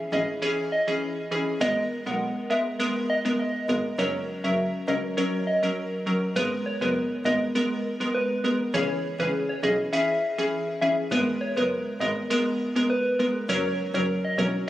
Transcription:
0.12 0.21 G#1 medium
0.12 0.40 E3 medium
0.12 0.40 C#4 medium
0.12 0.40 G#4 medium
0.12 0.23 D#5 medium
0.42 0.63 E3 medium
0.42 0.64 C#4 medium
0.42 0.64 G#4 loud
0.42 0.53 C#5 medium
0.72 0.82 D#5 medium
0.87 1.08 E3 medium
0.87 1.08 C#4 medium
0.87 1.08 G#4 medium
1.31 1.53 E3 medium
1.31 1.53 C#4 medium
1.31 1.53 G#4 medium
1.61 1.69 G#1 loud
1.61 2.03 G#3 medium
1.61 2.03 B3 medium
1.61 2.03 A#4 loud
1.61 1.80 D#5 loud
2.06 2.14 B1 medium
2.06 2.47 G#3 medium
2.06 2.47 B3 medium
2.06 2.47 A#4 medium
2.06 2.16 F#5 medium
2.50 2.77 G#3 medium
2.50 2.78 B3 medium
2.50 2.78 A#4 medium
2.50 2.61 E5 medium
2.79 3.01 G#3 loud
2.79 3.01 B3 medium
2.79 3.01 A#4 loud
3.10 3.20 D#5 medium
3.25 3.45 G#3 medium
3.25 3.46 B3 medium
3.25 3.46 A#4 medium
3.39 3.82 D#5 medium
3.69 3.77 G#1 medium
3.69 3.90 G#3 medium
3.69 3.90 B3 medium
3.69 3.90 A#4 medium
3.98 4.07 F#1 loud
3.98 4.40 F#3 medium
3.98 4.40 C#4 medium
3.98 4.41 A#4 loud
3.98 4.09 C#5 loud
4.44 4.52 F#1 medium
4.44 4.84 F#3 medium
4.44 4.85 C#4 medium
4.44 4.85 A#4 medium
4.44 4.53 E5 medium
4.88 4.96 C#2 medium
4.88 5.15 F#3 medium
4.88 5.15 C#4 medium
4.88 5.15 A#4 medium
4.88 4.98 D#5 medium
5.17 5.39 F#3 medium
5.17 5.39 C#4 medium
5.17 5.39 A#4 loud
5.17 5.28 C#5 medium
5.47 5.57 D#5 medium
5.63 5.83 F#3 medium
5.63 5.83 C#4 medium
5.63 5.83 A#4 medium
6.06 6.28 F#3 medium
6.06 6.28 C#4 medium
6.06 6.28 A#4 medium
6.36 6.44 G#1 medium
6.36 6.57 G#3 medium
6.36 6.58 B3 medium
6.36 6.58 A#4 loud
6.36 6.46 B4 medium
6.66 6.76 C#5 medium
6.81 6.90 F#1 medium
6.81 7.22 G#3 medium
6.81 7.22 B3 medium
6.81 7.22 A#4 medium
6.81 6.91 B4 medium
7.25 7.33 G#1 medium
7.25 7.53 G#3 medium
7.25 7.53 B3 medium
7.25 7.53 A#4 medium
7.25 7.35 D#5 medium
7.55 7.76 G#3 medium
7.55 7.77 B3 medium
7.55 7.77 A#4 loud
8.00 8.21 G#3 medium
8.00 8.21 B3 medium
8.00 8.21 A#4 medium
8.14 8.57 B4 medium
8.44 8.65 G#3 medium
8.44 8.66 B3 medium
8.44 8.66 A#4 medium
8.74 8.82 C#2 loud
8.74 8.95 E3 medium
8.74 8.95 C#4 medium
8.74 8.95 G#4 loud
8.74 8.93 C#5 loud
9.19 9.27 C#2 medium
9.19 9.60 E3 medium
9.19 9.60 C#4 medium
9.19 9.60 G#4 medium
9.19 9.29 B4 medium
9.49 9.58 C#5 medium
9.63 9.71 B1 loud
9.63 9.90 E3 medium
9.63 9.91 C#4 medium
9.63 9.91 G#4 medium
9.63 9.73 D#5 medium
9.93 10.14 E3 medium
9.93 10.14 C#4 medium
9.93 10.14 G#4 loud
9.93 10.35 E5 medium
10.38 10.58 E3 medium
10.38 10.59 C#4 medium
10.38 10.59 G#4 medium
10.81 11.03 E3 medium
10.81 11.03 C#4 medium
10.81 11.03 G#4 medium
10.81 10.92 E5 medium
11.11 11.20 G#1 loud
11.11 11.33 G#3 medium
11.11 11.33 B3 medium
11.11 11.33 A#4 loud
11.11 11.22 B4 loud
11.41 11.51 C#5 medium
11.57 11.65 F#1 medium
11.57 11.97 G#3 medium
11.57 11.97 B3 medium
11.57 11.98 A#4 medium
11.57 11.66 B4 medium
12.00 12.09 G#1 loud
12.00 12.28 G#3 medium
12.00 12.28 B3 medium
12.00 12.28 A#4 medium
12.00 12.11 D#5 medium
12.30 12.52 G#3 loud
12.30 12.52 B3 medium
12.30 12.52 A#4 loud
12.76 12.96 G#3 medium
12.76 12.96 B3 medium
12.76 12.96 A#4 medium
12.90 13.33 B4 medium
13.19 13.41 G#3 medium
13.19 13.41 B3 medium
13.19 13.41 A#4 medium
13.49 13.57 F#1 loud
13.49 13.70 F#3 loud
13.49 13.70 C#4 medium
13.49 13.71 A#4 loud
13.49 13.69 C#5 loud
13.94 14.03 F#1 medium
13.94 14.35 F#3 medium
13.94 14.35 C#4 medium
13.94 14.35 A#4 medium
13.94 14.03 C#5 medium
14.25 14.34 D#5 medium
14.38 14.46 E1 loud
14.38 14.66 F#3 medium
14.38 14.66 C#4 medium
14.38 14.66 A#4 medium
14.38 14.48 C#5 medium

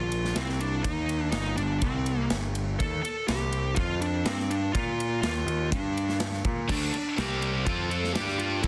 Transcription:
0.00 0.32 A#1 medium
0.00 0.37 F4 medium
0.12 ride medium
0.25 snare soft
0.35 0.81 C2 medium
0.35 0.61 C4 medium
0.35 snare medium
0.35 ride loud
0.49 snare soft
0.60 0.84 D4 medium
0.60 ride medium
0.84 1.30 D#2 medium
0.84 1.30 D#4 medium
0.84 kick loud
0.84 ride loud
1.09 ride medium
1.32 1.55 G1 loud
1.32 1.57 D#4 medium
1.32 snare loud
1.32 ride medium
1.57 1.80 G1 medium
1.57 1.82 D4 medium
1.57 ride medium
1.82 2.27 C2 medium
1.82 2.27 C4 medium
1.82 kick loud
1.82 ride loud
2.06 ride medium
2.30 2.76 G1 loud
2.30 snare loud
2.30 ride medium
2.55 ride medium
2.79 3.02 D#2 medium
2.79 3.01 A4 loud
2.79 kick loud
2.79 ride medium
3.03 3.27 A4 loud
3.03 muted picked electric bass stroke soft
3.03 ride medium
3.28 3.74 C2 loud
3.28 3.78 G4 loud
3.28 snare loud
3.28 ride medium
3.53 ride medium
3.75 4.22 F2 loud
3.75 3.98 F4 medium
3.75 kick loud
3.75 ride medium
4.02 4.27 D4 medium
4.02 ride medium
4.25 4.71 G2 medium
4.25 4.51 C4 medium
4.25 snare loud
4.25 ride medium
4.39 snare soft
4.50 4.73 D4 medium
4.50 ride medium
4.73 5.20 A#2 medium
4.73 5.20 F4 loud
4.73 kick loud
4.73 ride loud
5.00 ride medium
5.22 5.45 D#2 loud
5.22 5.71 F4 medium
5.22 snare loud
5.22 ride medium
5.46 5.69 D#2 medium
5.46 ride medium
5.72 6.41 G2 medium
5.72 6.17 D4 medium
5.72 kick loud
5.72 ride loud
5.97 ride medium
6.09 snare soft
6.20 snare medium
6.20 ride medium
6.33 snare soft
6.45 6.67 A#2 medium
6.45 kick loud
6.45 ride medium
6.68 6.92 D2 loud
6.68 6.92 D3 medium
6.68 6.92 A3 loud
6.68 6.92 D4 loud
6.68 7.20 D4 medium
6.68 kick loud
6.68 crash loud
6.93 muted distorted electric guitar stroke medium
6.93 muted picked electric bass stroke soft
6.93 ride medium
7.18 7.63 C2 loud
7.18 7.66 C3 medium
7.18 7.66 G3 medium
7.18 7.66 C4 loud
7.18 7.68 G4 medium
7.18 snare loud
7.18 ride medium
7.42 ride medium
7.65 8.12 F2 medium
7.65 8.14 F3 medium
7.65 8.14 C4 medium
7.65 7.91 F4 loud
7.65 8.15 F4 medium
7.65 kick loud
7.65 ride medium
7.90 8.13 A4 loud
7.90 ride medium
8.04 snare soft
8.14 8.60 G2 loud
8.14 8.63 G3 medium
8.14 8.63 D4 loud
8.14 8.39 G4 loud
8.14 8.63 G4 loud
8.14 snare loud
8.14 ride medium
8.28 snare soft
8.38 8.61 F4 medium
8.38 ride medium
8.62 8.68 A2 loud
8.62 8.68 A3 loud
8.62 8.68 E4 medium
8.62 8.68 E4 loud
8.62 8.68 A4 loud
8.62 kick loud
8.62 ride medium

